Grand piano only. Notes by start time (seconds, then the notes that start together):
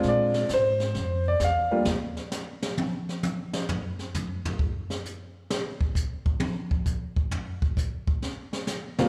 Already playing: G#3 C4 D4 F4
0.08 D5
0.54 C5
1.28 D5
1.44 F5
1.71 G3 A#3 D4 F4
8.99 D#2 G3 A#3 C4 F4